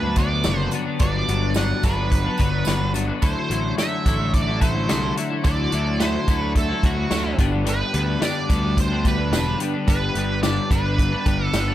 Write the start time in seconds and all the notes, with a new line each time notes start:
Already playing: D2 F#3 B4 D5 G5
0.04 F#3 B3 D4
0.16 D3 F#3 B3 D5, kick, closed hi-hat, tambourine
0.20 D4
0.31 F#3 B3 D4
0.44 F#1 G2 D3 F#3 B3 D4, snare, closed hi-hat, tambourine
0.58 F#3 B3 D4
0.71 D3 F#3 B3 D4, closed hi-hat, tambourine
0.85 F#3 B3 D4
0.99 G1 G2 D3 F#3 B3 D4 D5, kick, closed hi-hat, tambourine
1.28 G1 D3 F#3 B3 D4, closed hi-hat, tambourine
1.54 G2 D3 F#3 B3 D4 F#5, snare, closed hi-hat, tambourine
1.83 G1 D3 F#3 B3 D4 B4, kick, snare, closed hi-hat, tambourine
1.97 F#3 B3 D4
2.10 kick, closed hi-hat, tambourine
2.25 F#3 B3 D4
2.38 G1 D3 F#3 B3 D4, kick, closed hi-hat, tambourine
2.52 F#3 B3 D4
2.65 G1 G2 D3 F#3 B3 D4, snare, closed hi-hat, tambourine
2.81 F#3 B3 D4
2.94 D3 F#3 B3 D4, closed hi-hat, tambourine
3.08 F#3 B3 D4
3.22 D2 D3 F#3 A3 E4 A4 C5 D5 F#5, kick, closed hi-hat, tambourine
3.50 A1 D3 F#3 A3 E4, closed hi-hat, tambourine
3.77 D3 F#3 A3 E4 E5, snare, closed hi-hat, tambourine
4.05 A1 D3 F#3 A3 E4, kick, closed hi-hat, tambourine
4.18 F#3 A3 E4
4.34 D5, kick, closed hi-hat, tambourine
4.48 F#3 A3 E4
4.61 D3 F#3 A3 E4 C5, kick, closed hi-hat, tambourine
4.75 F#3 A3 E4
4.88 C2 D3 F#3 A3 E4, snare, closed hi-hat, tambourine
5.03 F#3 A3 E4
5.16 D3 F#3 A3 E4, closed hi-hat, tambourine
5.30 F#3 A3 E4
5.44 D2 D3 F#3 A3 E4 D5, kick, closed hi-hat, tambourine
5.72 D2 D3 F#3 A3 E4, closed hi-hat, tambourine
5.99 D3 F#3 A3 E4 C5, snare, closed hi-hat, tambourine
6.27 D2 D3 F#3 A3 E4, kick, closed hi-hat, tambourine
6.37 E4 B4
6.42 F#3 A3
6.55 A4, kick, closed hi-hat, tambourine
6.69 F#3 A3 E4
6.83 D2 D3 F#3 A3 E4 F#4, kick, closed hi-hat
6.97 F#3 A3 E4
7.10 D2 D3 F#3 A3 E4, snare, closed hi-hat, tambourine
7.25 F#3 A3 E4
7.38 G1 G2 D3 G3 B3 D4 G4 B4 G5, kick, closed hi-hat, tambourine
7.52 G3 B3 D4
7.65 G2 D3 G3 B3 D4, closed hi-hat, tambourine
7.69 B4
7.92 D2 D3 G3 B3 D4, closed hi-hat, tambourine
8.20 G2 D3 G3 B3 D4, snare, closed hi-hat, tambourine
8.25 D5
8.49 D2 D3 G3 B3 D4, kick, closed hi-hat, tambourine
8.63 G3 B3 D4
8.77 C5, kick, closed hi-hat, tambourine
8.91 G3 B3 D4
9.04 D3 G3 B3 D4 B4, kick, closed hi-hat, tambourine
9.18 G3 B3 D4
9.31 E1 G2 D3 G3 B3 D4, snare, closed hi-hat, tambourine
9.46 G3 B3 D4
9.60 D3 G3 B3 D4, closed hi-hat, tambourine
9.74 G3 B3 D4
9.87 G1 G2 D3 G3 B3 D4 B4, kick, closed hi-hat, tambourine
10.15 G1 D3 G3 B3 D4, closed hi-hat, tambourine
10.43 G2 D3 G3 B3 D4 D5, snare, closed hi-hat, tambourine
10.70 G1 D3 G3 B3 D4 B4, kick, closed hi-hat, tambourine
10.83 G3 B3 D4
10.98 kick, closed hi-hat
11.12 G3 B3 D4
11.25 G1 D3 G3 B3 D4, kick, closed hi-hat, tambourine
11.39 G3 B3 D4
11.45 A4
11.53 G1 G2 D3 G3 B3 D4, snare, closed hi-hat, tambourine
11.68 G3 B3 D4